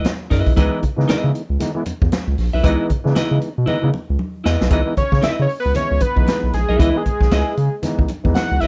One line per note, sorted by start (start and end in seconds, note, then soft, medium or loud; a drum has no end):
0.00 0.11 E4 soft
0.00 0.11 B4 medium
0.00 0.10 D#5 medium
0.05 0.29 C#5 medium
0.05 snare loud
0.05 closed hi-hat medium
0.05 high conga medium
0.30 0.43 F#2 medium
0.30 0.52 E4 medium
0.30 0.55 G#4 medium
0.30 0.53 B4 medium
0.30 0.53 D#5 medium
0.30 kick loud
0.30 snare soft
0.30 open hi-hat medium
0.46 0.54 B1 medium
0.46 kick loud
0.46 high conga medium
0.55 0.69 C#2 loud
0.55 0.83 E3 loud
0.55 0.84 G#3 loud
0.55 0.84 B3 loud
0.55 0.84 D#4 loud
0.55 0.78 E4 loud
0.55 0.79 B4 medium
0.55 0.79 D#5 loud
0.55 kick loud
0.55 closed hi-hat loud
0.83 0.89 C#3 medium
0.83 kick medium
0.83 closed hi-hat medium
0.97 1.06 C#3 medium
0.97 1.41 E3 medium
0.97 1.42 G#3 medium
0.97 1.42 B3 medium
0.97 1.42 D#4 loud
0.97 snare soft
1.08 1.15 C#3 soft
1.08 1.30 E4 medium
1.08 1.30 B4 medium
1.08 1.31 D#5 loud
1.08 snare loud
1.08 closed hi-hat medium
1.08 high conga medium
1.24 1.32 C#3 loud
1.35 closed hi-hat medium
1.50 1.57 C#2 medium
1.59 1.71 E3 medium
1.59 1.71 G#3 medium
1.59 1.71 B3 medium
1.59 1.72 D#4 medium
1.59 snare soft
1.59 closed hi-hat medium
1.59 muted conga medium
1.59 low conga medium
1.74 1.82 E3 medium
1.74 1.83 G#3 medium
1.74 1.83 B3 medium
1.74 1.83 E4 medium
1.85 1.92 E2 soft
1.85 1.93 B3 soft
1.85 1.94 D#4 soft
1.85 closed hi-hat medium
1.85 muted conga medium
2.02 2.09 E2 loud
2.02 kick loud
2.12 snare loud
2.12 closed hi-hat medium
2.12 high conga medium
2.27 2.35 C#2 medium
2.38 2.50 A#1 medium
2.38 snare soft
2.38 open hi-hat medium
2.53 2.61 B1 medium
2.53 2.62 E4 medium
2.53 2.63 B4 medium
2.53 2.65 E5 medium
2.53 high conga medium
2.63 2.75 C#2 loud
2.63 2.91 E3 loud
2.63 2.91 G#3 loud
2.63 2.91 B3 loud
2.63 2.92 D#4 loud
2.63 2.85 E4 medium
2.63 2.86 B4 medium
2.63 2.86 D#5 medium
2.63 kick loud
2.63 closed hi-hat medium
2.63 muted conga soft
2.90 2.96 C#3 medium
2.90 kick medium
2.90 closed hi-hat medium
3.04 3.13 C#3 loud
3.04 3.49 E3 medium
3.04 3.49 G#3 medium
3.04 3.49 B3 medium
3.04 3.11 D4 medium
3.04 snare soft
3.12 3.53 D#4 medium
3.12 3.37 E4 medium
3.12 closed hi-hat medium
3.16 3.22 C#3 soft
3.16 3.38 B4 loud
3.16 3.38 D#5 loud
3.16 snare loud
3.16 high conga medium
3.31 3.39 C#3 loud
3.41 closed hi-hat medium
3.58 3.65 B2 medium
3.66 3.74 C#3 medium
3.66 3.78 E3 medium
3.66 3.78 G#3 medium
3.66 3.78 B3 medium
3.66 3.79 D#4 medium
3.66 3.89 E4 medium
3.66 3.89 B4 medium
3.66 3.90 D#5 medium
3.66 muted conga medium
3.66 low conga medium
3.82 3.91 C#3 loud
3.82 3.90 E3 medium
3.82 3.90 G#3 medium
3.82 3.90 B3 medium
3.82 3.91 D#4 medium
3.94 4.01 D#4 soft
3.94 muted conga medium
4.10 4.17 C#2 loud
4.19 high conga medium
4.44 4.57 E2 medium
4.44 4.66 E4 medium
4.44 4.67 B4 medium
4.44 4.67 D#5 loud
4.44 snare medium
4.61 4.69 B1 medium
4.61 snare loud
4.61 high conga medium
4.69 4.82 C#2 loud
4.69 4.81 E3 loud
4.69 4.82 G#3 loud
4.69 4.82 B3 loud
4.69 4.82 D#4 loud
4.69 4.93 E4 medium
4.69 4.93 B4 medium
4.69 4.94 D#5 medium
4.69 kick loud
4.69 closed hi-hat medium
4.69 muted conga soft
4.85 4.93 E3 medium
4.85 4.94 G#3 medium
4.85 4.94 B3 medium
4.85 4.94 D#4 medium
4.97 5.04 C#3 medium
4.97 5.05 D#4 soft
4.97 5.22 C#5 loud
4.97 kick medium
4.97 closed hi-hat medium
5.12 5.20 C#3 loud
5.12 kick medium
5.12 snare soft
5.22 5.30 C#3 medium
5.22 5.44 E4 medium
5.22 5.45 B4 medium
5.22 5.45 D#5 medium
5.22 5.31 E5 loud
5.22 snare loud
5.22 closed hi-hat medium
5.22 high conga medium
5.39 5.47 C#3 loud
5.39 5.49 C#5 medium
5.49 open hi-hat medium
5.60 5.77 B4 loud
5.65 5.73 C#2 medium
5.74 5.82 C#2 soft
5.74 6.02 E3 medium
5.74 6.02 G#3 medium
5.74 6.03 B3 medium
5.74 6.03 E4 medium
5.74 6.03 C#5 loud
5.74 snare soft
5.74 closed hi-hat medium
5.74 muted conga medium
5.74 low conga medium
5.91 5.99 C#2 loud
6.00 6.53 B4 loud
6.00 kick medium
6.00 closed hi-hat medium
6.00 muted conga medium
6.15 6.24 B1 loud
6.15 6.60 E3 medium
6.15 6.61 G#3 medium
6.15 6.61 B3 medium
6.15 6.61 D#4 medium
6.15 kick medium
6.27 snare loud
6.27 closed hi-hat medium
6.27 high conga medium
6.43 6.51 B1 loud
6.53 6.65 A#1 medium
6.53 6.81 G#4 medium
6.53 snare soft
6.53 closed hi-hat medium
6.69 6.77 B1 medium
6.69 6.78 E4 medium
6.69 6.79 B4 medium
6.69 6.80 E5 medium
6.69 high conga medium
6.78 6.91 C#2 loud
6.78 6.89 E3 loud
6.78 6.90 G#3 medium
6.78 6.90 B3 medium
6.78 7.01 E4 medium
6.78 6.99 E4 medium
6.78 6.90 E4 loud
6.78 7.02 B4 medium
6.78 7.02 D#5 loud
6.78 kick loud
6.78 closed hi-hat loud
6.78 muted conga soft
6.93 7.01 E3 medium
6.93 7.02 G#3 medium
6.93 7.02 B3 medium
6.93 7.02 D#4 medium
6.93 7.75 G#4 loud
7.04 7.12 B3 soft
7.04 7.13 D#4 soft
7.04 kick medium
7.04 closed hi-hat medium
7.21 7.29 B1 medium
7.21 kick medium
7.21 snare soft
7.31 7.43 C#2 loud
7.31 7.53 E4 medium
7.31 7.54 B4 medium
7.31 7.54 D#5 medium
7.31 snare loud
7.31 closed hi-hat medium
7.31 high conga medium
7.57 7.69 C#3 medium
7.57 closed hi-hat medium
7.82 8.10 E3 medium
7.82 8.11 G#3 medium
7.82 8.11 B3 medium
7.82 8.11 D#4 medium
7.82 snare soft
7.82 closed hi-hat medium
7.82 muted conga medium
7.82 low conga medium
7.99 8.07 C#2 medium
7.99 kick medium
8.08 closed hi-hat medium
8.08 muted conga medium
8.24 8.33 E2 loud
8.24 8.67 E3 medium
8.24 8.67 G#3 medium
8.24 8.67 B3 medium
8.24 8.67 D#4 medium
8.24 kick loud
8.34 8.62 F#5 loud
8.34 snare loud
8.34 closed hi-hat medium
8.34 high conga medium
8.51 8.59 C#2 loud
8.60 8.67 A#1 medium
8.60 8.67 E4 medium
8.60 8.67 B4 medium
8.60 8.67 D#5 medium
8.60 8.67 E5 loud
8.60 snare soft
8.60 closed hi-hat medium